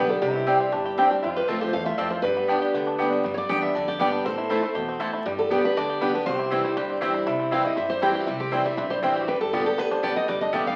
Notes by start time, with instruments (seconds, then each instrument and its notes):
Already playing: upright bass B1, steel-string acoustic guitar D3, five-string banjo B3 D4, resonator guitar played with a steel bar G4
0.09 five-string banjo G3, steel-string acoustic guitar D4 G4 A4
0.22 upright bass C2, steel-string acoustic guitar C3 G4, five-string banjo G3, resonator guitar played with a steel bar E4
0.35 five-string banjo C4
0.47 steel-string acoustic guitar G3 C4 D4 G4, five-string banjo G3, mandolin C4 G4 D5 G5
0.60 five-string banjo C4
0.72 upright bass G1, steel-string acoustic guitar G2, five-string banjo D4
0.86 five-string banjo G4
0.98 steel-string acoustic guitar G3 C4 D4 G4, mandolin C4 G4 D5 G5, five-string banjo C4
1.11 five-string banjo D4, steel-string acoustic guitar D4 G4
1.23 upright bass F2, steel-string acoustic guitar F2, five-string banjo C4, resonator guitar played with a steel bar F4
1.36 five-string banjo G4, steel-string acoustic guitar B4
1.48 upright bass D2, steel-string acoustic guitar F3 A3 C4 F4 A4, five-string banjo A3, mandolin C4 F4 C5 A5
1.61 five-string banjo G4, steel-string acoustic guitar C5
1.73 steel-string acoustic guitar E2 F5, upright bass E2, five-string banjo A3
1.86 five-string banjo F4, steel-string acoustic guitar E5
1.93 resonator guitar played with a steel bar E4
1.98 steel-string acoustic guitar F2 D5, upright bass F2, mandolin C4 F4 C5 A5, five-string banjo G4
2.10 five-string banjo F4, steel-string acoustic guitar C5
2.22 steel-string acoustic guitar G2 B4, upright bass G2, five-string banjo G3, resonator guitar played with a steel bar G4
2.37 five-string banjo B3
2.48 steel-string acoustic guitar G3 B3 D4 G4, mandolin B3 G4 D5 G5, five-string banjo D4
2.62 five-string banjo G4
2.74 upright bass D2, steel-string acoustic guitar D3, five-string banjo B3
2.87 five-string banjo D4
2.98 steel-string acoustic guitar G3 B3 D4 G4, mandolin B3 G4 D5 G5, five-string banjo B3
3.12 five-string banjo G3
3.24 upright bass G2, steel-string acoustic guitar G2, five-string banjo G3
3.34 five-string banjo B3, steel-string acoustic guitar C#5 D5
3.49 upright bass E2, steel-string acoustic guitar G3 B3 D4 G4 G5, five-string banjo G3, mandolin B3 G4 D5 G5
3.62 five-string banjo B3, steel-string acoustic guitar E5
3.75 upright bass F2, steel-string acoustic guitar D3 D5, five-string banjo D4
3.88 five-string banjo G4, steel-string acoustic guitar D5
3.99 upright bass G2, steel-string acoustic guitar G3 B3 D4 G4 D5, mandolin B3 G4 D5 G5, five-string banjo B3
4.13 five-string banjo D4
4.25 steel-string acoustic guitar A2 C5, upright bass A2, five-string banjo C4, resonator guitar played with a steel bar A4
4.38 five-string banjo E4
4.50 steel-string acoustic guitar E3 A3 C4 E4, mandolin A3 E4 C5 A5, five-string banjo G4
4.63 five-string banjo A3, steel-string acoustic guitar C4 E4
4.75 upright bass E2, steel-string acoustic guitar B2, five-string banjo G4
4.89 five-string banjo C4
5.00 steel-string acoustic guitar A2, mandolin A3 E4 C5 A5, five-string banjo G4
5.13 five-string banjo E4
5.25 steel-string acoustic guitar G2, upright bass G2, five-string banjo G3, resonator guitar played with a steel bar G4
5.39 five-string banjo B3, steel-string acoustic guitar A4
5.50 steel-string acoustic guitar G3 B3 D4 G4, five-string banjo G3, mandolin B3 G4 D5 G5
5.64 five-string banjo B3, steel-string acoustic guitar D4 G4 B4
5.77 upright bass D2, steel-string acoustic guitar D3 D5, five-string banjo D4
5.90 five-string banjo G4
6.01 steel-string acoustic guitar G3 B3 D4 G4, mandolin B3 G4 D5 G5, five-string banjo B3
6.14 five-string banjo D4, steel-string acoustic guitar D4 G4 B4
6.26 upright bass C2, steel-string acoustic guitar C3 C5, five-string banjo C4, resonator guitar played with a steel bar G4
6.39 five-string banjo E4
6.51 steel-string acoustic guitar E3 G3 C4 E4, mandolin C4 E4 C5 G5, five-string banjo G4
6.64 five-string banjo G3, steel-string acoustic guitar C4 E4
6.77 upright bass G1, steel-string acoustic guitar G2, five-string banjo G4
6.90 five-string banjo C4
7.01 steel-string acoustic guitar E3 G3 C4 E4, mandolin C4 E4 C5 G5, five-string banjo G4
7.14 five-string banjo E4
7.27 upright bass C2, steel-string acoustic guitar C3, five-string banjo G3, resonator guitar played with a steel bar E4
7.39 five-string banjo C4
7.51 steel-string acoustic guitar E3 G3 C4 E4 F5, mandolin C4 E4 C5 G5, five-string banjo E4
7.65 five-string banjo G3, steel-string acoustic guitar C4 E4 D#5
7.76 upright bass G2, steel-string acoustic guitar G2 E5, five-string banjo C4
7.89 five-string banjo G4, steel-string acoustic guitar C5
8.02 steel-string acoustic guitar E3 G3 C4 E4 G4, five-string banjo C4, mandolin C4 E4 C5 G5
8.11 steel-string acoustic guitar E4, five-string banjo G4
8.20 steel-string acoustic guitar F4
8.27 upright bass C2, steel-string acoustic guitar C3 E4, five-string banjo G3
8.40 five-string banjo C4, steel-string acoustic guitar G4
8.51 steel-string acoustic guitar E3 G3 C4 E4 C5, mandolin C4 E4 C5 G5, five-string banjo E4
8.65 five-string banjo G3, steel-string acoustic guitar C4 E4 E5
8.77 upright bass B1, steel-string acoustic guitar G2 E5, five-string banjo C4
8.90 five-string banjo G4, steel-string acoustic guitar C5
9.03 upright bass A1, steel-string acoustic guitar E3 G3 C4 E4, mandolin C4 E4 C5 G5, five-string banjo C4
9.16 five-string banjo G4
9.21 resonator guitar played with a steel bar F#4
9.27 upright bass G1, steel-string acoustic guitar G2 B4, five-string banjo G3, resonator guitar played with a steel bar G4
9.41 five-string banjo D4, steel-string acoustic guitar A4
9.53 steel-string acoustic guitar D3 G3 B3 F4 G4, mandolin B3 G4 D5 A5, five-string banjo B3
9.66 steel-string acoustic guitar B3 G4 A4, five-string banjo G4
9.78 upright bass D2, steel-string acoustic guitar D3 B4, five-string banjo B3
9.91 five-string banjo D4, steel-string acoustic guitar C5
10.03 steel-string acoustic guitar D3 G3 B3 G4 D5, mandolin B3 G4 D5 A5, five-string banjo G4
10.15 five-string banjo G3, steel-string acoustic guitar B3 G4 D#5
10.28 upright bass G1, steel-string acoustic guitar G2 D5, five-string banjo G3
10.41 five-string banjo D4, steel-string acoustic guitar D#5
10.52 steel-string acoustic guitar D3 G3 B3 G4 E5, mandolin B3 G4 D5 A5, five-string banjo G4
10.67 five-string banjo G3, steel-string acoustic guitar F5